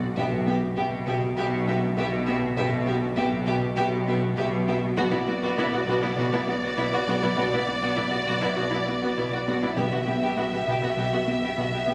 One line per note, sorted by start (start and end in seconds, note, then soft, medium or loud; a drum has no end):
0.00 0.10 B1 medium
0.00 0.13 B1 medium
0.00 0.10 B2 medium
0.00 taiko mid soft
0.17 0.70 B1 medium
0.17 4.94 B1 medium
0.17 0.70 B2 medium
0.17 0.35 B2 medium
0.17 0.26 B3 medium
0.17 0.26 G4 medium
0.17 0.25 E5 medium
0.17 taiko loud
0.33 taiko mid soft
0.47 0.65 B3 medium
0.47 0.55 B3 medium
0.47 0.57 G4 medium
0.47 0.55 E5 medium
0.63 taiko medium
0.76 1.31 B1 medium
0.76 1.30 B2 medium
0.76 0.85 B3 medium
0.76 0.95 B3 medium
0.76 0.84 G4 medium
0.76 0.85 E5 medium
0.76 taiko mid medium
0.93 taiko mid soft
1.07 1.26 B2 loud
1.07 1.15 B3 medium
1.07 1.16 G4 medium
1.07 1.15 E5 medium
1.07 taiko medium
1.22 taiko mid medium
1.37 1.90 B1 medium
1.37 1.55 B2 medium
1.37 1.90 B2 medium
1.37 1.45 B3 medium
1.37 1.46 G4 medium
1.37 1.46 E5 medium
1.67 1.75 B3 medium
1.67 1.86 B3 medium
1.67 1.76 G4 medium
1.67 1.75 E5 medium
1.82 taiko medium
1.97 2.50 B1 medium
1.97 2.50 B2 medium
1.97 2.16 B2 loud
1.97 2.05 B3 medium
1.97 2.06 G4 medium
1.97 2.06 E5 medium
2.27 2.35 B3 medium
2.27 2.46 B3 medium
2.27 2.36 G4 medium
2.27 2.35 E5 medium
2.42 taiko mid soft
2.57 3.10 B1 medium
2.57 3.10 B2 medium
2.57 2.76 B2 medium
2.57 2.66 B3 medium
2.57 2.66 G4 medium
2.57 2.66 E5 medium
2.57 taiko medium
2.72 taiko mid medium
2.87 2.95 B3 medium
2.87 3.06 B3 medium
2.87 2.95 G4 medium
2.87 2.95 E5 medium
3.02 taiko medium
3.17 3.70 B1 medium
3.17 3.70 B2 medium
3.17 3.35 B3 medium
3.17 3.26 B3 medium
3.17 3.26 G4 medium
3.17 3.25 E5 medium
3.17 taiko mid medium
3.33 taiko mid medium
3.46 3.65 B2 loud
3.46 3.56 B3 medium
3.46 3.54 G4 medium
3.46 3.55 E5 medium
3.46 taiko medium
3.62 taiko mid soft
3.77 4.30 B1 loud
3.77 3.95 B2 medium
3.77 4.30 B2 loud
3.77 3.85 B3 medium
3.77 3.85 G4 medium
3.77 3.85 E5 medium
4.08 4.26 B3 medium
4.08 4.16 B3 medium
4.08 4.16 G4 medium
4.08 4.17 E5 medium
4.22 taiko medium
4.37 4.90 B1 medium
4.37 4.90 B2 medium
4.37 4.56 B2 medium
4.37 4.46 B3 medium
4.37 4.45 G4 medium
4.37 4.46 E5 medium
4.67 4.75 B3 medium
4.67 4.86 B3 medium
4.67 4.76 G4 medium
4.67 4.77 E5 medium
4.83 taiko mid medium
4.97 5.03 B1 loud
4.97 9.73 B1 loud
4.97 5.04 B2 loud
4.97 5.16 B2 loud
4.97 5.03 B3 medium
4.97 5.03 F#4 medium
4.97 9.74 D5 loud
4.97 taiko loud
5.11 5.18 B2 medium
5.11 5.19 B3 medium
5.11 5.17 E4 medium
5.11 taiko mid medium
5.26 5.33 B1 medium
5.26 5.33 B2 medium
5.26 5.33 B3 medium
5.26 5.46 B3 medium
5.26 5.33 F#4 medium
5.42 5.48 B2 loud
5.42 5.49 B3 loud
5.42 5.48 F#4 loud
5.42 taiko medium
5.57 5.64 B1 medium
5.57 5.64 B2 medium
5.57 5.76 B3 medium
5.57 5.64 B3 medium
5.57 5.64 E4 medium
5.57 taiko mid medium
5.72 5.79 B2 medium
5.72 5.79 B3 medium
5.72 5.79 F#4 medium
5.72 taiko mid medium
5.87 5.93 B1 loud
5.87 6.06 B2 loud
5.87 5.94 B2 loud
5.87 5.94 B3 loud
5.87 5.94 F#4 medium
5.87 taiko medium
6.02 6.08 B2 medium
6.02 6.08 B3 medium
6.02 6.09 E4 medium
6.02 taiko mid medium
6.17 6.23 B1 loud
6.17 6.23 B2 loud
6.17 6.36 B2 medium
6.17 6.24 B3 loud
6.17 6.24 F#4 loud
6.33 6.39 B2 medium
6.33 6.39 B3 medium
6.33 6.39 E4 medium
6.47 6.53 B1 medium
6.47 6.54 B2 medium
6.47 6.54 B3 medium
6.47 6.66 B3 medium
6.47 6.54 F#4 medium
6.62 6.68 B2 medium
6.62 6.68 B3 medium
6.62 6.69 F#4 medium
6.62 taiko medium
6.77 6.83 B1 medium
6.77 6.83 B2 medium
6.77 6.96 B2 loud
6.77 6.83 B3 medium
6.77 6.83 E4 medium
6.92 6.98 B2 medium
6.92 6.98 B3 medium
6.92 6.99 F#4 medium
7.07 7.13 B1 loud
7.07 7.14 B2 loud
7.07 7.14 B3 medium
7.07 7.26 B3 medium
7.07 7.14 F#4 medium
7.22 7.28 B2 medium
7.22 7.28 B3 loud
7.22 7.28 E4 medium
7.22 taiko mid medium
7.37 7.43 B1 loud
7.37 7.43 B2 loud
7.37 7.56 B2 loud
7.37 7.43 B3 loud
7.37 7.44 F#4 medium
7.37 taiko medium
7.52 7.58 B2 medium
7.52 7.59 B3 medium
7.52 7.59 E4 medium
7.52 taiko mid medium
7.67 7.74 B1 medium
7.67 7.73 B2 medium
7.67 7.86 B3 medium
7.67 7.74 B3 medium
7.67 7.73 F#4 medium
7.81 7.88 B2 loud
7.81 7.89 B3 loud
7.81 7.87 F#4 medium
7.81 taiko medium
7.95 8.04 B1 medium
7.95 8.03 B2 medium
7.95 8.16 B3 medium
7.95 8.04 B3 medium
7.95 8.02 E4 medium
7.95 taiko mid medium
8.10 8.17 B2 medium
8.10 8.19 B3 medium
8.10 8.16 F#4 medium
8.10 taiko mid soft
8.26 8.33 B1 medium
8.26 8.33 B2 medium
8.26 8.46 B2 loud
8.26 8.34 B3 loud
8.26 8.32 F#4 loud
8.26 taiko medium
8.41 8.48 B2 medium
8.41 8.49 B3 medium
8.41 8.47 E4 medium
8.41 taiko mid soft
8.55 8.63 B1 loud
8.55 8.62 B2 loud
8.55 8.76 B2 medium
8.55 8.64 B3 medium
8.55 8.62 F#4 medium
8.70 8.77 B2 medium
8.70 8.79 B3 medium
8.70 8.77 E4 medium
8.86 8.93 B1 medium
8.86 8.92 B2 medium
8.86 8.93 B3 medium
8.86 9.06 B3 medium
8.86 8.93 F#4 soft
9.02 9.08 B2 medium
9.02 9.09 B3 medium
9.02 9.08 F#4 medium
9.02 taiko medium
9.17 9.23 B1 medium
9.17 9.24 B2 medium
9.17 9.36 B2 medium
9.17 9.24 B3 medium
9.17 9.23 E4 medium
9.31 9.38 B2 medium
9.31 9.39 B3 medium
9.31 9.38 F#4 medium
9.47 9.53 B1 medium
9.47 9.54 B2 medium
9.47 9.54 B3 medium
9.47 9.66 B3 medium
9.47 9.53 F#4 medium
9.62 9.68 B2 medium
9.62 9.69 B3 medium
9.62 9.68 E4 medium
9.62 taiko mid medium
9.76 9.83 B1 medium
9.76 11.94 B1 loud
9.76 10.63 B2 medium
9.76 9.83 B2 medium
9.76 9.96 B2 medium
9.76 9.84 B3 medium
9.76 9.82 G4 medium
9.76 11.94 E5 medium
9.76 taiko loud
9.92 9.98 B2 medium
9.92 9.99 B3 soft
9.92 9.98 F#4 medium
9.92 taiko mid soft
10.07 10.13 B1 medium
10.07 10.14 B2 medium
10.07 10.13 B3 soft
10.07 10.26 B3 medium
10.07 10.13 G4 medium
10.22 10.28 B2 medium
10.22 10.28 B3 medium
10.22 10.28 G4 medium
10.22 taiko medium
10.37 10.43 B1 medium
10.37 10.43 B2 medium
10.37 10.43 B3 medium
10.37 10.55 B3 medium
10.37 10.44 F#4 soft
10.37 taiko mid medium
10.52 10.58 B2 medium
10.52 10.58 B3 medium
10.52 10.59 G4 medium
10.52 taiko mid medium
10.67 10.73 B1 medium
10.67 10.73 B2 medium
10.67 10.85 B2 loud
10.67 10.73 B3 medium
10.67 10.75 G4 medium
10.67 taiko medium
10.82 10.88 B2 soft
10.82 10.88 B3 soft
10.82 10.89 F#4 soft
10.82 taiko mid soft
10.97 11.04 B1 medium
10.97 11.03 B2 medium
10.97 11.15 B2 medium
10.97 11.03 B3 medium
10.97 11.04 G4 medium
11.12 11.18 B2 soft
11.12 11.18 B3 soft
11.12 11.18 F#4 soft
11.26 11.34 B1 soft
11.26 11.33 B2 medium
11.26 11.33 B3 medium
11.26 11.46 B3 medium
11.26 11.34 G4 soft
11.42 11.48 B2 medium
11.42 11.48 B3 medium
11.42 11.50 G4 medium
11.42 taiko medium
11.56 11.64 B1 soft
11.56 11.63 B2 soft
11.56 11.76 B2 medium
11.56 11.63 B3 soft
11.56 11.65 F#4 soft
11.71 11.78 B2 soft
11.71 11.78 B3 soft
11.71 11.80 G4 soft
11.86 11.93 B1 medium
11.86 11.93 B2 medium
11.86 11.92 B3 medium
11.86 11.94 B3 medium
11.86 11.94 G4 medium